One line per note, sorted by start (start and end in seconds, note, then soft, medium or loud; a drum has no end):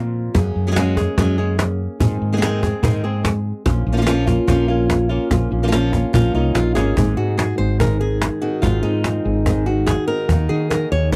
0.00 0.28 A#2 medium
0.00 0.34 A#2 medium
0.00 0.34 F3 soft
0.00 0.34 A#3 soft
0.00 0.33 C4 soft
0.00 0.34 C4 soft
0.00 0.35 F4 soft
0.00 0.35 A#4 medium
0.34 0.52 F#2 loud
0.34 0.74 F#3 medium
0.34 0.76 A#3 medium
0.34 0.76 C#4 medium
0.34 0.76 G#4 medium
0.34 muted nylon-string guitar stroke medium
0.34 cajon bass loud
0.34 cajon slap soft
0.56 1.07 F#2 medium
0.67 0.70 F#3 medium
0.67 0.71 G#3 medium
0.67 0.71 C#4 medium
0.67 0.71 G#4 medium
0.72 0.75 F#3 medium
0.72 0.75 G#3 medium
0.72 0.75 C#4 medium
0.72 0.76 G#4 medium
0.76 0.96 F#3 soft
0.76 0.96 F#3 medium
0.76 0.96 G#3 medium
0.76 0.96 A#3 soft
0.76 0.96 C#4 medium
0.76 0.96 C#4 soft
0.76 0.96 G#4 medium
0.76 0.95 G#4 soft
0.76 cajon slap loud
0.96 1.17 G#3 soft
0.96 1.17 A#3 soft
0.96 1.17 C#4 soft
0.96 1.16 G#4 soft
0.96 1.17 G#4 medium
0.96 cajon bass medium
0.96 cajon slap soft
1.18 1.87 F#2 loud
1.18 1.37 F#3 medium
1.18 1.38 G#3 medium
1.18 1.38 C#4 medium
1.18 1.37 G#4 medium
1.18 muted nylon-string guitar stroke medium
1.18 cajon bass loud
1.18 cajon slap soft
1.38 1.58 G#3 medium
1.38 1.59 A#3 soft
1.38 1.58 C#4 medium
1.38 1.58 C#4 soft
1.38 1.57 G#4 soft
1.38 1.58 G#4 medium
1.58 2.00 A#3 soft
1.58 2.00 C#4 soft
1.58 1.99 G#4 soft
1.58 muted nylon-string guitar stroke medium
1.58 cajon slap loud
2.00 2.18 G#2 medium
2.00 2.40 D#3 medium
2.00 2.41 G#3 medium
2.00 2.41 C4 medium
2.00 2.41 G#4 medium
2.00 muted nylon-string guitar stroke medium
2.00 cajon bass medium
2.22 2.73 G#2 medium
2.33 2.36 D#3 medium
2.33 2.36 G#3 medium
2.33 2.37 C4 medium
2.33 2.37 G#4 medium
2.37 2.40 D#3 medium
2.37 2.41 G#3 medium
2.37 2.41 C4 medium
2.37 2.42 G#4 medium
2.41 2.61 D#3 soft
2.41 2.61 D#3 medium
2.41 2.61 G#3 soft
2.41 2.62 G#3 medium
2.41 2.62 C4 medium
2.41 2.62 G#4 medium
2.41 2.61 G#4 soft
2.41 cajon slap loud
2.62 2.82 G#3 soft
2.62 2.82 C4 soft
2.62 2.83 C4 soft
2.62 2.82 G#4 soft
2.62 2.82 G#4 medium
2.62 cajon bass medium
2.62 cajon slap soft
2.83 3.52 G#2 loud
2.83 3.03 D#3 medium
2.83 3.03 G#3 medium
2.83 3.03 C4 medium
2.83 3.03 G#4 medium
2.83 muted nylon-string guitar stroke medium
2.83 cajon bass loud
3.03 3.24 G#3 soft
3.03 3.24 C4 soft
3.03 3.24 C4 medium
3.03 3.23 G#4 soft
3.03 3.23 G#4 medium
3.24 3.65 G#3 soft
3.24 3.65 C4 soft
3.24 3.65 G#4 soft
3.24 muted nylon-string guitar stroke medium
3.24 cajon bass medium
3.24 cajon slap loud
3.65 3.83 A#1 loud
3.65 3.85 F3 medium
3.65 3.85 A#3 medium
3.65 3.86 C#4 medium
3.65 3.85 F4 medium
3.65 muted nylon-string guitar stroke medium
3.65 cajon bass loud
3.65 cajon slap soft
3.87 4.38 A#1 medium
3.87 4.06 A#3 soft
3.87 4.06 C#4 soft
3.87 4.06 F4 soft
3.92 3.96 F3 medium
3.92 3.96 A#3 medium
3.92 3.97 C#4 medium
3.92 3.97 F4 medium
3.97 4.00 F3 medium
3.97 4.01 A#3 medium
3.97 4.01 C#4 medium
3.97 4.02 F4 medium
4.02 4.05 F3 medium
4.02 4.05 A#3 medium
4.02 4.06 C#4 medium
4.02 4.06 F4 medium
4.06 4.26 F3 medium
4.06 4.26 A#3 medium
4.06 4.27 C#4 medium
4.06 4.25 F4 medium
4.06 muted nylon-string guitar stroke medium
4.06 cajon slap loud
4.27 4.47 A#3 soft
4.27 4.47 C#4 soft
4.27 4.48 C#4 soft
4.27 4.47 F4 medium
4.27 4.47 F4 soft
4.27 cajon bass medium
4.27 cajon slap soft
4.47 5.17 A#1 loud
4.47 4.68 F3 medium
4.47 4.68 A#3 medium
4.47 4.68 C#4 medium
4.47 4.67 F4 medium
4.47 cajon bass loud
4.47 cajon slap soft
4.68 5.10 A#3 soft
4.68 4.89 A#3 soft
4.68 5.09 C#4 soft
4.68 4.89 C#4 soft
4.68 5.08 F4 medium
4.68 4.89 F4 soft
4.89 muted nylon-string guitar stroke medium
4.89 cajon bass medium
4.89 cajon slap loud
5.09 5.30 A#3 soft
5.09 5.30 C#4 medium
5.09 5.30 C#4 soft
5.09 5.30 F4 medium
5.09 5.30 F4 soft
5.30 5.48 A#1 loud
5.30 5.50 F3 medium
5.30 5.51 A#3 medium
5.30 5.51 C#4 medium
5.30 5.49 F4 medium
5.30 muted nylon-string guitar stroke medium
5.30 cajon bass medium
5.30 cajon slap soft
5.51 6.03 A#1 medium
5.51 5.71 A#3 soft
5.51 5.71 C#4 soft
5.51 5.71 F4 soft
5.63 5.66 F3 soft
5.63 5.67 A#3 medium
5.63 5.67 C#4 medium
5.63 5.67 F4 medium
5.68 5.71 F3 medium
5.68 5.71 A#3 medium
5.68 5.71 C#4 medium
5.68 5.72 F4 medium
5.72 5.92 F3 medium
5.72 5.92 A#3 medium
5.72 5.92 C#4 loud
5.72 5.92 F4 medium
5.72 muted nylon-string guitar stroke medium
5.72 cajon slap loud
5.93 6.13 A#3 soft
5.93 6.13 C#4 soft
5.93 6.13 F4 soft
5.93 6.13 F4 medium
5.93 cajon bass medium
5.93 cajon slap soft
6.13 6.31 A#1 loud
6.13 6.33 F3 medium
6.13 6.34 A#3 medium
6.13 6.34 C#4 medium
6.13 6.34 F4 medium
6.13 6.33 F4 medium
6.13 cajon bass loud
6.34 6.53 C2 medium
6.34 6.55 A#3 soft
6.34 6.76 A#3 soft
6.34 6.55 C#4 soft
6.34 6.76 C#4 medium
6.34 6.97 D#4 medium
6.34 6.54 F4 soft
6.34 6.54 F4 medium
6.55 6.74 A#1 medium
6.55 6.75 F4 medium
6.55 muted nylon-string guitar stroke medium
6.55 cajon slap loud
6.75 6.95 G#1 medium
6.75 6.97 A#3 soft
6.75 6.96 C#4 soft
6.75 6.96 C#4 medium
6.75 6.96 F4 soft
6.75 6.96 F4 medium
6.75 7.36 G#4 medium
6.75 cajon slap medium
6.96 7.14 G#1 medium
6.96 8.61 G#2 medium
6.96 7.16 D#3 medium
6.96 7.17 G#3 medium
6.96 7.17 C4 medium
6.96 7.17 D#4 medium
6.96 7.16 G#4 medium
6.96 cajon bass medium
7.17 7.52 G#2 medium
7.17 7.37 C4 soft
7.17 7.37 D#4 soft
7.17 7.79 F#4 medium
7.17 7.37 G#4 soft
7.38 7.57 G#4 medium
7.38 muted nylon-string guitar stroke medium
7.38 cajon slap loud
7.58 8.28 G#1 medium
7.58 7.79 C4 soft
7.58 7.79 D#4 soft
7.58 7.78 G#4 soft
7.58 7.79 C5 medium
7.79 7.99 D#3 medium
7.79 8.41 D#3 medium
7.79 7.99 G#3 medium
7.79 8.00 C4 medium
7.79 7.99 D#4 medium
7.79 7.98 G#4 medium
7.79 8.00 A#4 medium
7.79 cajon bass loud
8.00 8.20 C4 soft
8.00 8.20 D#4 soft
8.00 8.20 G#4 soft
8.00 8.62 G#4 medium
8.21 muted nylon-string guitar stroke medium
8.21 cajon slap loud
8.41 9.46 D#3 medium
8.41 8.62 C4 soft
8.41 8.62 D#4 soft
8.41 8.82 F#4 medium
8.41 8.62 G#4 soft
8.62 8.80 G#1 loud
8.62 10.27 G#2 medium
8.62 8.82 D#3 medium
8.62 8.83 G#3 medium
8.62 8.83 C4 medium
8.62 8.83 D#4 medium
8.62 9.25 F4 medium
8.62 8.82 G#4 medium
8.62 cajon bass loud
8.62 cajon slap soft
8.83 9.19 G#2 medium
8.83 9.03 C4 soft
8.83 9.66 D#4 medium
8.83 9.03 D#4 soft
8.83 9.03 G#4 soft
8.83 cajon slap soft
9.04 10.28 C4 soft
9.04 muted nylon-string guitar stroke medium
9.04 cajon slap medium
9.25 9.95 G#1 medium
9.25 9.45 C4 soft
9.25 9.45 D#4 soft
9.25 9.45 G#4 soft
9.45 9.66 D#3 medium
9.45 10.08 D#3 medium
9.45 9.66 G#3 medium
9.45 9.66 C4 medium
9.45 9.66 D#4 medium
9.45 9.65 G#4 medium
9.45 cajon bass loud
9.45 cajon slap soft
9.66 9.87 C4 soft
9.66 9.87 D#4 soft
9.66 10.29 F#4 medium
9.66 9.86 G#4 soft
9.87 10.07 G#4 medium
9.87 muted nylon-string guitar stroke soft
9.87 cajon bass medium
9.87 cajon slap medium
10.07 10.29 D#3 medium
10.07 10.29 C4 soft
10.07 10.28 D#4 soft
10.07 10.28 G#4 soft
10.07 10.69 A#4 loud
10.28 10.46 D#2 loud
10.28 10.49 D#3 medium
10.28 11.16 D#3 medium
10.28 10.49 A#3 medium
10.28 10.49 D#4 medium
10.28 10.48 F#4 medium
10.28 cajon bass loud
10.28 cajon slap soft
10.49 10.85 D#3 medium
10.49 10.71 A#3 soft
10.49 10.70 D#4 soft
10.49 10.69 F#4 soft
10.49 11.12 G#4 medium
10.70 11.11 A#3 soft
10.70 11.12 D#4 soft
10.70 11.11 F#4 soft
10.70 10.91 A#4 medium
10.70 cajon slap medium
10.92 11.16 D#2 medium
10.92 11.12 C#5 loud
11.12 11.16 A#2 medium
11.12 11.16 C5 medium
11.12 muted nylon-string guitar stroke medium
11.12 cajon bass loud
11.12 cajon slap soft